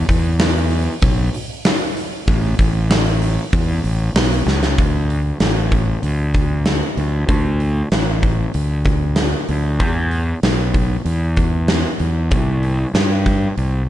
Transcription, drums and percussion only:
0.09 kick, open hi-hat
0.39 snare, open hi-hat
0.71 open hi-hat
1.01 kick, open hi-hat
1.34 open hi-hat
1.65 snare, open hi-hat
1.97 open hi-hat
2.28 kick, open hi-hat
2.59 kick, open hi-hat
2.90 snare, open hi-hat
3.21 open hi-hat
3.53 kick, open hi-hat
3.85 open hi-hat
4.16 snare, open hi-hat
4.48 snare
4.63 snare
4.78 kick, open hi-hat
5.10 open hi-hat
5.40 snare, open hi-hat
5.71 kick, open hi-hat
6.03 open hi-hat
6.34 kick, open hi-hat
6.65 snare, open hi-hat
6.97 open hi-hat
7.29 kick, open hi-hat
7.60 open hi-hat
7.92 snare, open hi-hat
8.23 kick, open hi-hat
8.54 open hi-hat
8.85 kick, open hi-hat
9.16 snare, open hi-hat
9.49 open hi-hat
9.80 kick, open hi-hat
10.11 open hi-hat
10.43 snare, open hi-hat
10.74 kick, open hi-hat
11.06 open hi-hat
11.36 kick, open hi-hat
11.68 snare, open hi-hat
11.99 open hi-hat
12.31 kick, open hi-hat
12.63 open hi-hat
12.95 snare, open hi-hat
13.26 kick, open hi-hat
13.58 open hi-hat

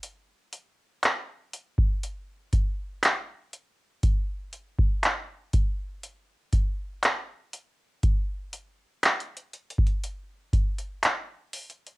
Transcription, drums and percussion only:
0.03 closed hi-hat
0.53 closed hi-hat
1.03 clap, closed hi-hat
1.53 closed hi-hat
1.78 kick
2.03 closed hi-hat
2.53 kick, closed hi-hat
3.03 clap, closed hi-hat
3.53 closed hi-hat
4.03 kick, closed hi-hat
4.53 closed hi-hat
4.79 kick
5.03 clap, closed hi-hat
5.53 kick, closed hi-hat
6.03 closed hi-hat
6.53 kick, closed hi-hat
7.03 clap, closed hi-hat
7.53 closed hi-hat
8.03 kick, closed hi-hat
8.53 closed hi-hat
9.03 clap, closed hi-hat
9.20 closed hi-hat
9.37 closed hi-hat
9.53 closed hi-hat
9.70 closed hi-hat
9.78 kick
9.87 closed hi-hat
10.04 closed hi-hat
10.53 kick, closed hi-hat
10.78 closed hi-hat
11.03 clap, closed hi-hat
11.53 closed hi-hat, open hi-hat
11.70 closed hi-hat
11.87 closed hi-hat

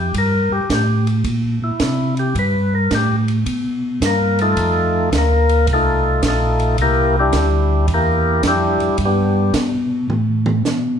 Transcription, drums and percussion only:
0.14 kick, ride
0.70 kick, snare, hi-hat pedal, ride
1.07 ride
1.24 kick, ride
1.80 kick, snare, hi-hat pedal, ride
2.17 ride
2.35 kick, ride
2.91 kick, snare, hi-hat pedal, ride
3.28 ride
3.46 kick, ride
4.01 kick, snare, hi-hat pedal, ride
4.39 ride
4.57 kick, ride
5.12 kick, snare, hi-hat pedal, ride
5.49 ride
5.67 kick, ride
6.23 kick, snare, hi-hat pedal, ride
6.60 ride
6.78 kick, ride
7.33 kick, snare, hi-hat pedal, ride
7.88 kick, ride
8.43 kick, snare, hi-hat pedal, ride
8.80 ride
8.98 kick, ride
9.54 kick, snare, hi-hat pedal, ride
10.10 mid tom
10.46 mid tom
10.65 snare, hi-hat pedal

